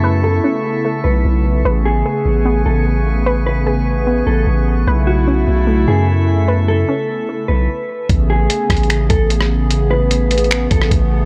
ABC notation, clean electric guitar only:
X:1
M:4/4
L:1/8
Q:1/4=149
K:A
V:1 name="Clean electric guitar"
z A4 B3 | z G4 A z2 | z B4 A z2 | z F4 G z2 |
z A4 B3 | z G4 A z2 | z B4 A z2 |]